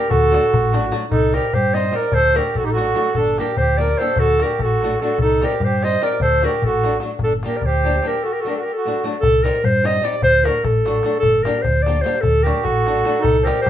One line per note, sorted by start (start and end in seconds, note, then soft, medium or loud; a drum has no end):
0.00 0.12 A#4 medium
0.09 0.37 D2 medium
0.09 0.93 F#4 medium
0.09 0.93 A4 loud
0.09 darbuka dum medium
0.24 darbuka tek soft
0.31 0.43 F#3 medium
0.31 0.43 A3 medium
0.31 0.44 D4 medium
0.31 0.44 F#4 medium
0.31 darbuka tek medium
0.45 darbuka tek soft
0.54 0.89 A1 loud
0.54 darbuka dum loud
0.64 darbuka tek soft
0.73 0.84 F#3 medium
0.73 0.84 A3 medium
0.73 0.84 D4 medium
0.73 0.85 F#4 medium
0.73 darbuka tek medium
0.91 1.03 F#3 medium
0.91 1.03 A3 medium
0.91 1.04 D4 medium
0.91 1.04 F#4 medium
0.91 darbuka tek medium
1.11 1.38 C2 medium
1.11 1.33 D#4 medium
1.11 1.35 A4 loud
1.11 darbuka dum medium
1.32 1.45 G3 medium
1.32 1.45 C4 medium
1.32 1.45 D#4 medium
1.32 1.46 G4 medium
1.32 1.52 G4 medium
1.32 1.55 A#4 medium
1.32 darbuka tek medium
1.53 1.91 G2 medium
1.53 1.75 G4 medium
1.53 1.76 C5 loud
1.53 darbuka dum medium
1.73 1.85 G3 medium
1.73 1.85 C4 medium
1.73 1.86 D#4 medium
1.73 1.86 G4 medium
1.73 1.95 C5 medium
1.73 1.97 D#5 medium
1.73 darbuka tek medium
1.91 2.04 G3 medium
1.91 2.04 C4 medium
1.91 2.04 D#4 medium
1.91 2.05 G4 medium
1.91 2.14 A#4 medium
1.91 darbuka tek medium
1.95 2.16 D5 loud
2.03 darbuka tek soft
2.12 2.39 D2 medium
2.12 2.37 A4 medium
2.12 2.38 C5 loud
2.12 darbuka dum medium
2.34 2.46 F#3 medium
2.34 2.46 A3 medium
2.34 2.47 D4 medium
2.34 2.47 F#4 medium
2.34 2.56 G4 medium
2.34 2.58 A#4 loud
2.34 darbuka tek medium
2.55 2.92 A1 medium
2.55 2.64 F#4 medium
2.55 2.66 A4 medium
2.55 darbuka dum medium
2.64 2.71 D#4 medium
2.64 2.72 G4 medium
2.70 3.16 F#4 medium
2.70 3.15 A4 medium
2.76 2.87 F#3 medium
2.76 2.88 A3 medium
2.76 2.88 D4 medium
2.76 2.88 F#4 medium
2.76 darbuka tek medium
2.95 3.06 F#3 medium
2.95 3.07 A3 medium
2.95 3.07 D4 medium
2.95 3.07 F#4 medium
2.95 darbuka tek medium
3.06 darbuka tek soft
3.15 3.41 G1 medium
3.15 3.38 D4 medium
3.15 3.37 A4 loud
3.15 darbuka dum medium
3.38 3.49 G3 medium
3.38 3.50 A#3 medium
3.38 3.50 D4 medium
3.38 3.57 G4 medium
3.38 3.51 G4 medium
3.38 3.56 A#4 medium
3.38 darbuka tek medium
3.57 3.93 D2 medium
3.57 3.79 G4 medium
3.57 3.79 C5 loud
3.57 darbuka dum medium
3.77 3.89 G3 medium
3.77 3.89 A#3 soft
3.77 3.90 D4 soft
3.77 3.90 G4 medium
3.77 3.99 A#4 medium
3.77 4.00 D5 loud
3.77 darbuka tek medium
3.97 4.09 G3 medium
3.97 4.09 A#3 medium
3.97 4.09 D4 medium
3.97 4.10 G4 medium
3.97 4.18 A4 medium
3.97 4.20 C5 medium
3.97 darbuka tek medium
4.07 darbuka tek soft
4.16 4.42 D2 medium
4.16 4.41 F#4 medium
4.16 4.44 A4 loud
4.16 darbuka dum medium
4.40 4.51 F#3 medium
4.40 4.51 A3 medium
4.40 4.52 D4 soft
4.40 4.52 F#4 medium
4.40 4.61 G4 medium
4.40 4.63 A#4 medium
4.40 darbuka tek medium
4.59 4.94 A1 medium
4.59 5.00 A4 medium
4.59 darbuka dum medium
4.63 5.00 F#4 medium
4.81 4.92 F#3 medium
4.81 4.92 A3 medium
4.81 4.93 D4 medium
4.81 4.93 F#4 medium
4.81 darbuka tek medium
4.92 darbuka tek soft
5.00 5.11 F#3 medium
5.00 5.11 A3 medium
5.00 5.12 D4 medium
5.00 5.18 F#4 medium
5.00 5.18 A4 medium
5.00 darbuka tek medium
5.04 5.13 F#4 medium
5.10 darbuka tek soft
5.18 5.44 C2 medium
5.18 5.42 D#4 medium
5.18 5.46 A4 loud
5.18 darbuka dum medium
5.41 5.52 G3 medium
5.41 5.53 C4 soft
5.41 5.53 D#4 medium
5.41 5.53 G4 medium
5.41 5.62 G4 medium
5.41 5.66 A#4 medium
5.41 darbuka tek medium
5.60 5.96 G2 medium
5.60 5.83 G4 medium
5.60 darbuka dum medium
5.64 5.86 C5 medium
5.82 5.93 G3 medium
5.82 5.93 C4 soft
5.82 5.94 D#4 soft
5.82 5.94 G4 medium
5.82 6.02 C5 medium
5.82 6.05 D#5 loud
5.82 darbuka tek medium
6.01 6.12 G3 medium
6.01 6.12 C4 medium
6.01 6.12 D#4 medium
6.01 6.12 G4 medium
6.01 6.20 A#4 medium
6.01 6.21 D5 medium
6.01 darbuka tek medium
6.13 darbuka tek soft
6.20 6.45 D2 medium
6.20 6.42 A4 medium
6.20 6.46 C5 loud
6.20 darbuka dum medium
6.42 6.53 F#3 medium
6.42 6.53 A3 soft
6.42 6.53 D4 medium
6.42 6.54 F#4 medium
6.42 6.63 G4 medium
6.42 6.66 A#4 medium
6.42 darbuka tek medium
6.62 6.97 A1 medium
6.62 6.98 F#4 medium
6.62 6.97 A4 medium
6.62 darbuka dum medium
6.83 6.94 F#3 medium
6.83 6.94 A3 soft
6.83 6.94 D4 medium
6.83 6.94 F#4 medium
6.83 darbuka tek medium
7.00 7.12 F#3 medium
7.00 7.12 A3 medium
7.00 7.12 D4 medium
7.00 7.13 F#4 medium
7.00 darbuka tek medium
7.11 darbuka tek soft
7.19 7.46 G1 medium
7.19 darbuka dum medium
7.23 7.33 D4 medium
7.23 7.33 A4 medium
7.43 7.55 G3 medium
7.43 7.55 A#3 medium
7.43 7.55 D4 medium
7.43 7.55 G4 medium
7.43 7.57 G4 medium
7.43 darbuka tek medium
7.47 7.58 A#4 medium
7.56 7.63 A#4 medium
7.56 7.67 D5 medium
7.62 7.98 D2 medium
7.62 darbuka dum medium
7.66 8.05 G4 medium
7.66 8.09 C5 loud
7.84 7.94 G3 medium
7.84 7.95 A#3 medium
7.84 7.95 D4 medium
7.84 7.96 G4 medium
8.03 8.13 G3 medium
8.03 8.14 A#3 medium
8.03 8.14 D4 medium
8.03 8.14 G4 medium
8.03 darbuka tek medium
8.07 8.24 G4 medium
8.07 8.24 A#4 medium
8.12 darbuka tek soft
8.23 8.32 F#4 medium
8.23 8.34 A4 medium
8.31 8.40 G4 medium
8.31 8.42 A#4 medium
8.40 8.48 F#4 medium
8.40 8.49 A4 medium
8.45 8.55 F#3 medium
8.45 8.56 A3 soft
8.45 8.57 D4 medium
8.45 8.57 F#4 medium
8.45 8.56 G4 medium
8.45 8.56 A#4 medium
8.55 8.64 F#4 medium
8.55 8.63 A4 medium
8.61 8.72 G4 soft
8.61 8.74 A#4 medium
8.73 9.06 F#4 medium
8.73 9.05 A4 medium
8.85 8.96 F#3 medium
8.85 8.96 A3 soft
8.85 8.96 D4 medium
8.85 8.97 F#4 medium
9.04 9.14 F#3 medium
9.04 9.15 A3 medium
9.04 9.15 D4 soft
9.04 9.15 F#4 medium
9.20 9.48 C2 medium
9.20 9.45 A4 loud
9.20 darbuka dum medium
9.43 9.55 G3 medium
9.43 9.55 C4 medium
9.43 9.56 D#4 medium
9.43 9.56 G4 medium
9.43 9.66 A#4 medium
9.43 darbuka tek medium
9.64 9.99 G2 medium
9.64 9.88 C5 loud
9.64 darbuka dum medium
9.83 9.95 G3 medium
9.83 9.95 C4 medium
9.83 9.95 D#4 soft
9.83 9.96 G4 medium
9.83 10.06 D#5 loud
9.83 darbuka tek medium
10.01 10.14 G3 medium
10.01 10.14 C4 medium
10.01 10.15 D#4 medium
10.01 10.15 G4 medium
10.01 10.23 D5 medium
10.01 darbuka tek medium
10.22 10.48 D2 medium
10.22 10.46 C5 loud
10.22 darbuka dum medium
10.43 10.55 F#3 medium
10.43 10.56 A3 medium
10.43 10.56 D4 medium
10.43 10.57 F#4 medium
10.43 10.65 A#4 loud
10.43 darbuka tek medium
10.64 10.99 A1 medium
10.64 11.19 A4 loud
10.64 darbuka dum loud
10.85 10.96 F#3 medium
10.85 10.97 A3 soft
10.85 10.97 D4 medium
10.85 10.97 F#4 medium
10.85 darbuka tek medium
11.03 11.15 F#3 medium
11.03 11.15 A3 medium
11.03 11.15 D4 medium
11.03 11.16 F#4 medium
11.03 darbuka tek medium
11.14 darbuka tek soft
11.19 11.49 G1 medium
11.19 11.44 A4 loud
11.19 darbuka dum medium
11.43 11.57 G3 medium
11.43 11.57 A#3 medium
11.43 11.57 D4 medium
11.43 11.57 G4 medium
11.43 11.63 A#4 loud
11.43 darbuka tek medium
11.62 11.84 C5 loud
11.62 darbuka dum medium
11.66 12.01 D2 medium
11.83 11.97 G3 medium
11.83 12.03 D5 loud
11.83 darbuka tek medium
11.87 11.97 A#3 medium
11.87 11.98 D4 medium
11.87 11.98 G4 medium
12.02 12.15 G3 medium
12.02 12.16 A#3 medium
12.02 12.16 D4 medium
12.02 12.22 C5 medium
12.06 12.16 G4 medium
12.06 darbuka tek medium
12.15 darbuka tek soft
12.21 12.44 A4 loud
12.21 darbuka dum medium
12.25 12.50 D2 medium
12.35 darbuka tek soft
12.43 12.57 F#3 medium
12.43 12.57 A3 medium
12.43 12.57 D4 medium
12.43 12.57 F#4 medium
12.43 12.64 G4 medium
12.43 12.65 A#4 medium
12.43 darbuka tek medium
12.55 darbuka tek soft
12.62 13.01 A1 loud
12.62 13.23 F#4 medium
12.62 13.21 A4 medium
12.62 darbuka dum medium
12.76 darbuka tek soft
12.86 12.97 F#3 medium
12.86 12.97 A3 medium
12.86 12.97 D4 medium
12.86 12.98 F#4 medium
12.86 darbuka tek medium
13.04 13.16 F#3 medium
13.04 13.16 A3 medium
13.04 13.16 D4 medium
13.04 13.16 F#4 medium
13.04 darbuka tek medium
13.15 darbuka tek soft
13.19 13.37 D#4 medium
13.19 13.44 A4 loud
13.24 13.49 C2 medium
13.24 darbuka dum medium
13.42 13.57 G3 medium
13.42 13.61 G4 medium
13.42 13.47 A4 soft
13.42 13.63 A#4 medium
13.42 13.46 C5 medium
13.46 13.57 C4 medium
13.46 13.58 D#4 soft
13.46 13.58 G4 medium
13.46 darbuka tek medium
13.62 13.70 G4 medium
13.62 13.70 C5 loud
13.66 13.70 G2 medium
13.66 darbuka dum medium